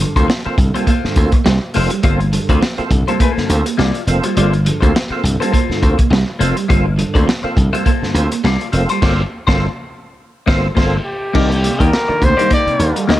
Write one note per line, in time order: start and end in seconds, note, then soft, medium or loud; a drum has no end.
0.00 0.17 G2 medium
0.00 0.17 D3 medium
0.00 0.10 F3 medium
0.00 muted clean electric guitar stroke soft
0.00 closed hi-hat medium
0.16 0.25 D2 medium
0.16 0.29 A#3 medium
0.16 0.28 A#3 soft
0.16 0.29 C4 medium
0.16 0.29 F4 medium
0.16 0.28 F4 soft
0.16 0.29 A4 medium
0.16 0.29 C5 medium
0.16 kick medium
0.16 closed hi-hat medium
0.28 0.39 F3 medium
0.28 muted clean electric guitar stroke soft
0.28 snare loud
0.45 0.58 A#3 medium
0.45 0.58 C4 medium
0.45 0.58 F4 medium
0.45 0.59 A4 medium
0.45 muted clean electric guitar stroke soft
0.45 muted slap bass stroke soft
0.58 0.70 C2 medium
0.58 0.75 G2 medium
0.58 0.75 D3 medium
0.58 muted clean electric guitar stroke soft
0.58 kick loud
0.58 closed hi-hat medium
0.74 0.83 G3 medium
0.74 0.87 A#3 medium
0.74 0.87 C4 medium
0.74 0.87 F4 medium
0.74 0.87 A4 medium
0.74 0.89 A4 medium
0.74 0.89 C5 medium
0.74 closed hi-hat medium
0.87 0.98 A#3 medium
0.87 1.15 A#3 medium
0.87 0.94 F4 soft
0.87 1.15 F4 medium
0.87 0.94 A4 soft
0.87 1.16 A4 medium
0.87 1.16 C5 medium
0.87 kick medium
0.87 closed hi-hat medium
1.04 1.17 G2 medium
1.04 1.17 D3 medium
1.04 muted slap bass stroke soft
1.04 snare soft
1.16 1.28 D2 medium
1.16 1.33 A#3 medium
1.16 1.33 C4 medium
1.16 1.33 F4 medium
1.16 1.33 A4 medium
1.16 muted clean electric guitar stroke soft
1.16 kick medium
1.16 closed hi-hat medium
1.32 1.40 A#3 medium
1.32 muted clean electric guitar stroke medium
1.32 kick loud
1.32 closed hi-hat medium
1.45 1.58 C2 loud
1.45 1.56 G3 medium
1.45 muted clean electric guitar stroke soft
1.45 snare loud
1.61 muted clean electric guitar stroke soft
1.74 1.87 F1 medium
1.74 1.92 A#3 medium
1.74 1.91 A#3 medium
1.74 1.91 C4 medium
1.74 1.90 F4 medium
1.74 1.91 F4 medium
1.74 1.91 A4 loud
1.74 1.90 A4 medium
1.74 1.89 C5 medium
1.74 open hi-hat medium
1.90 1.99 G3 medium
1.90 muted clean electric guitar stroke soft
1.90 closed hi-hat medium
2.03 2.37 G1 loud
2.03 2.14 G3 medium
2.03 2.25 A#3 medium
2.03 2.20 A#3 medium
2.03 2.20 C4 medium
2.03 2.20 F4 medium
2.03 2.21 F4 medium
2.03 2.20 A4 medium
2.03 2.19 A4 medium
2.03 2.19 C5 medium
2.03 kick loud
2.03 closed hi-hat medium
2.20 muted clean electric guitar stroke soft
2.20 closed hi-hat soft
2.32 2.49 G2 medium
2.32 2.49 D3 medium
2.32 2.44 F3 medium
2.32 muted clean electric guitar stroke soft
2.32 closed hi-hat medium
2.49 2.58 D2 loud
2.49 2.62 A#3 medium
2.49 2.61 A#3 soft
2.49 2.62 C4 medium
2.49 2.62 F4 medium
2.49 2.62 A4 medium
2.49 2.63 A4 medium
2.49 2.63 D5 medium
2.49 kick medium
2.49 closed hi-hat soft
2.61 2.72 F3 medium
2.61 muted clean electric guitar stroke soft
2.61 snare loud
2.78 2.91 A#3 medium
2.78 2.91 C4 medium
2.78 2.91 F4 medium
2.78 2.91 A4 medium
2.78 muted clean electric guitar stroke soft
2.78 muted slap bass stroke soft
2.78 closed hi-hat soft
2.90 3.02 C2 medium
2.90 3.07 G2 medium
2.90 3.08 D3 medium
2.90 muted clean electric guitar stroke soft
2.90 kick loud
2.90 closed hi-hat medium
3.07 3.16 G3 medium
3.07 3.21 A#3 medium
3.07 3.19 A#3 medium
3.07 3.21 C4 medium
3.07 3.19 F4 medium
3.07 3.20 A4 medium
3.07 3.21 C5 medium
3.07 closed hi-hat medium
3.20 3.31 A3 medium
3.20 3.31 A#3 medium
3.20 3.31 E4 medium
3.20 3.27 F4 soft
3.20 3.33 G#4 medium
3.20 3.27 A4 soft
3.20 3.33 B4 medium
3.20 kick medium
3.20 closed hi-hat medium
3.31 3.47 A#3 medium
3.31 3.47 F4 medium
3.31 3.48 A4 medium
3.31 3.48 C5 medium
3.37 3.50 G2 medium
3.37 3.50 D3 medium
3.37 muted slap bass stroke soft
3.37 snare soft
3.49 3.61 D2 medium
3.49 3.66 A#3 medium
3.49 3.66 C4 medium
3.49 3.66 F4 medium
3.49 3.66 A4 medium
3.49 muted clean electric guitar stroke soft
3.49 closed hi-hat medium
3.66 3.74 A#3 medium
3.66 muted clean electric guitar stroke soft
3.66 closed hi-hat medium
3.78 3.90 C2 loud
3.78 3.89 G3 medium
3.78 3.99 A#3 medium
3.78 4.00 F4 medium
3.78 4.00 A4 medium
3.78 4.00 D5 loud
3.78 snare medium
3.95 muted clean electric guitar stroke soft
3.95 closed hi-hat soft
4.07 4.19 F1 medium
4.07 4.24 A#3 medium
4.07 4.24 C4 medium
4.07 4.24 F4 medium
4.07 4.25 A4 loud
4.07 muted clean electric guitar stroke soft
4.07 closed hi-hat medium
4.23 4.32 G3 medium
4.23 4.34 A#3 soft
4.23 4.36 F4 medium
4.23 4.36 A4 medium
4.23 4.37 C5 medium
4.23 closed hi-hat medium
4.35 4.69 G1 loud
4.35 4.48 G3 medium
4.35 4.57 A#3 medium
4.35 4.53 A#3 medium
4.35 4.54 C4 medium
4.35 4.52 F4 medium
4.35 4.54 F4 medium
4.35 4.52 A4 medium
4.35 4.54 A4 medium
4.35 4.52 D5 medium
4.35 closed hi-hat medium
4.53 muted clean electric guitar stroke soft
4.53 closed hi-hat soft
4.65 4.83 G2 medium
4.65 4.83 D3 medium
4.65 4.77 F3 medium
4.65 muted clean electric guitar stroke soft
4.65 closed hi-hat medium
4.80 4.91 D2 loud
4.80 4.95 A#3 medium
4.80 4.94 A#3 medium
4.80 4.95 C4 medium
4.80 4.94 F4 medium
4.80 4.95 F4 medium
4.80 4.94 A4 medium
4.80 4.95 A4 medium
4.80 4.95 C5 medium
4.80 kick medium
4.80 closed hi-hat soft
4.95 5.06 F3 medium
4.95 muted clean electric guitar stroke soft
4.95 snare loud
5.10 5.24 A#3 medium
5.10 5.24 C4 medium
5.10 5.25 F4 medium
5.10 5.25 A4 medium
5.10 muted slap bass stroke soft
5.10 muted clean electric guitar stroke soft
5.23 5.35 C2 medium
5.23 5.41 G2 medium
5.23 5.41 D3 medium
5.23 muted clean electric guitar stroke soft
5.23 closed hi-hat medium
5.40 5.50 G3 medium
5.40 5.53 A#3 medium
5.40 5.50 A#3 medium
5.40 5.53 C4 medium
5.40 5.53 F4 medium
5.40 5.51 F4 medium
5.40 5.53 A4 medium
5.40 5.51 A4 medium
5.40 5.51 C5 medium
5.40 closed hi-hat medium
5.51 5.79 A#3 medium
5.51 5.65 A#3 medium
5.51 5.80 F4 medium
5.51 5.60 F4 soft
5.51 5.80 A4 loud
5.51 5.60 A4 soft
5.51 5.80 C5 medium
5.51 kick medium
5.51 closed hi-hat medium
5.69 5.83 G2 medium
5.69 5.83 D3 medium
5.69 muted slap bass stroke soft
5.69 snare soft
5.81 5.94 D2 medium
5.81 5.99 A#3 medium
5.81 5.99 C4 medium
5.81 5.99 F4 medium
5.81 5.99 A4 medium
5.81 muted clean electric guitar stroke soft
5.81 kick medium
5.81 closed hi-hat medium
5.98 6.08 A#3 medium
5.98 muted clean electric guitar stroke soft
5.98 kick medium
5.98 closed hi-hat medium
6.10 6.22 C2 loud
6.10 6.23 G3 medium
6.10 muted clean electric guitar stroke soft
6.10 snare loud
6.28 muted clean electric guitar stroke soft
6.39 6.52 F1 medium
6.39 6.57 A#3 medium
6.39 6.57 C4 medium
6.39 6.56 F4 medium
6.39 6.57 F4 medium
6.39 6.56 A4 medium
6.39 6.57 A4 medium
6.39 6.55 C5 medium
6.39 closed hi-hat medium
6.57 6.65 G3 medium
6.57 muted clean electric guitar stroke soft
6.57 closed hi-hat medium
6.68 7.03 G1 medium
6.68 6.80 G3 medium
6.68 6.90 A#3 medium
6.68 6.86 A#3 medium
6.68 6.86 C4 medium
6.68 6.85 F4 medium
6.68 6.86 F4 medium
6.68 6.84 A4 medium
6.68 6.86 A4 medium
6.68 6.84 C5 medium
6.68 kick loud
6.68 closed hi-hat medium
6.85 muted clean electric guitar stroke soft
6.98 7.15 G2 medium
6.98 7.15 D3 medium
6.98 7.09 F3 medium
6.98 muted clean electric guitar stroke soft
6.98 closed hi-hat medium
7.14 7.25 D2 medium
7.14 7.28 A#3 medium
7.14 7.26 A#3 medium
7.14 7.28 C4 medium
7.14 7.28 F4 medium
7.14 7.26 F4 medium
7.14 7.26 A4 medium
7.14 7.28 A4 medium
7.14 7.28 D5 medium
7.14 kick medium
7.14 closed hi-hat soft
7.27 7.38 F3 medium
7.27 muted clean electric guitar stroke soft
7.27 snare loud
7.43 7.57 A#3 medium
7.43 7.57 C4 medium
7.43 7.57 F4 medium
7.43 7.57 A4 medium
7.43 muted clean electric guitar stroke soft
7.43 muted slap bass stroke soft
7.56 7.69 C2 medium
7.56 7.73 G2 medium
7.56 7.73 D3 medium
7.56 muted clean electric guitar stroke soft
7.56 kick medium
7.56 closed hi-hat medium
7.73 7.82 G3 medium
7.73 7.86 A#3 medium
7.73 7.84 A#3 medium
7.73 7.86 C4 medium
7.73 7.84 F4 medium
7.73 7.85 F4 medium
7.73 7.84 A4 medium
7.73 7.86 A4 medium
7.73 7.86 C5 medium
7.73 closed hi-hat medium
7.85 8.13 A#3 medium
7.85 7.97 A#3 medium
7.85 7.92 F4 soft
7.85 8.13 F4 medium
7.85 7.92 A4 soft
7.85 8.13 A4 loud
7.85 8.14 C5 medium
7.85 kick medium
7.85 closed hi-hat medium
8.02 8.15 G2 medium
8.02 8.15 D3 medium
8.02 muted slap bass stroke soft
8.02 snare soft
8.14 8.26 D2 medium
8.14 8.31 A#3 medium
8.14 8.31 C4 medium
8.14 8.31 F4 medium
8.14 8.31 A4 medium
8.14 muted clean electric guitar stroke soft
8.14 closed hi-hat medium
8.32 8.40 A#3 medium
8.32 muted clean electric guitar stroke soft
8.32 closed hi-hat medium
8.44 8.56 C2 loud
8.44 8.55 G3 medium
8.44 8.66 A#3 medium
8.44 8.66 F4 loud
8.44 8.66 A4 medium
8.44 8.67 D5 loud
8.44 snare medium
8.60 muted clean electric guitar stroke soft
8.60 closed hi-hat soft
8.72 8.85 F1 medium
8.72 8.89 A#3 medium
8.72 8.89 C4 medium
8.72 8.89 F4 medium
8.72 8.89 A4 medium
8.72 muted clean electric guitar stroke soft
8.72 closed hi-hat medium
8.89 8.98 G3 medium
8.89 9.00 A#3 medium
8.89 9.01 F4 medium
8.89 9.02 A4 medium
8.89 9.02 C5 medium
8.89 closed hi-hat soft
9.01 9.23 G1 medium
9.01 9.22 A#3 medium
9.01 9.22 A#3 loud
9.01 9.22 C4 medium
9.01 9.22 F4 medium
9.01 9.23 F4 loud
9.01 9.22 A4 medium
9.01 9.23 A4 loud
9.01 9.23 D5 loud
9.01 kick loud
9.01 snare loud
9.01 crash medium
9.47 9.67 G1 loud
9.47 9.66 A#3 loud
9.47 9.67 A#3 loud
9.47 9.67 C4 loud
9.47 9.67 F4 loud
9.47 9.67 A4 loud
9.47 9.66 C5 loud
9.47 kick loud
9.47 snare loud
10.46 10.68 G1 loud
10.46 10.67 A#3 medium
10.46 10.68 A#3 loud
10.46 10.68 C4 loud
10.46 10.68 F4 loud
10.46 10.68 A4 loud
10.46 10.68 C5 loud
10.46 kick loud
10.46 snare loud
10.75 10.97 G1 loud
10.75 10.96 A#3 loud
10.75 10.97 A#3 loud
10.75 10.97 C4 loud
10.75 10.96 F4 medium
10.75 10.97 F4 loud
10.75 10.97 A4 loud
10.75 10.97 C5 loud
10.75 kick loud
10.75 snare medium
10.75 crash medium
11.05 11.84 G4 medium
11.33 11.67 C2 loud
11.33 13.20 D3 medium
11.33 11.51 D#3 medium
11.33 13.20 D#3 medium
11.33 13.20 G3 medium
11.33 11.55 A#3 medium
11.33 11.51 A#3 medium
11.33 13.20 A#3 medium
11.33 11.45 C4 medium
11.33 11.51 D4 medium
11.33 11.50 D#4 medium
11.33 11.49 G4 loud
11.33 11.49 D5 medium
11.33 kick loud
11.33 crash loud
11.50 muted clean electric guitar stroke medium
11.50 closed hi-hat soft
11.63 11.80 C3 medium
11.63 11.74 A#3 medium
11.63 muted clean electric guitar stroke soft
11.63 closed hi-hat medium
11.79 11.89 D#2 medium
11.79 11.93 D#3 medium
11.79 11.93 A#3 medium
11.79 11.91 A#3 medium
11.79 11.93 D4 medium
11.79 11.91 D#4 soft
11.79 11.91 G4 medium
11.79 12.26 A#4 medium
11.79 11.92 D#5 medium
11.79 kick medium
11.79 closed hi-hat medium
11.92 muted clean electric guitar stroke soft
11.92 snare loud
12.08 12.22 D#3 medium
12.08 12.22 A#3 medium
12.08 12.22 D4 medium
12.08 muted clean electric guitar stroke soft
12.08 muted slap bass stroke soft
12.22 12.33 D2 medium
12.22 12.38 C3 medium
12.22 12.33 A#3 medium
12.22 12.52 C5 loud
12.22 kick medium
12.22 closed hi-hat medium
12.37 12.51 D#3 medium
12.37 12.47 G3 medium
12.37 12.50 A#3 medium
12.37 12.48 A#3 medium
12.37 12.50 D4 medium
12.37 12.49 D#4 medium
12.37 12.49 G4 medium
12.37 12.50 D5 medium
12.37 closed hi-hat medium
12.49 12.77 A#3 medium
12.49 12.62 A#3 medium
12.49 12.57 A#3 soft
12.49 12.57 D4 soft
12.49 12.77 D#4 medium
12.49 12.78 G4 medium
12.49 12.78 D5 medium
12.49 kick medium
12.49 closed hi-hat medium
12.54 13.06 D5 loud
12.67 12.80 C3 medium
12.67 muted slap bass stroke soft
12.67 muted clean electric guitar stroke soft
12.67 closed hi-hat soft
12.79 12.91 D#2 medium
12.79 12.96 D#3 medium
12.79 12.96 A#3 medium
12.79 12.96 D4 medium
12.79 muted clean electric guitar stroke soft
12.79 closed hi-hat medium
12.96 13.04 G3 medium
12.96 muted clean electric guitar stroke medium
12.96 closed hi-hat medium
13.07 13.20 D2 medium
13.07 13.20 A#3 medium
13.07 13.20 D#4 medium
13.07 13.20 G4 medium
13.07 13.20 D#5 medium
13.07 muted clean electric guitar stroke soft
13.07 snare loud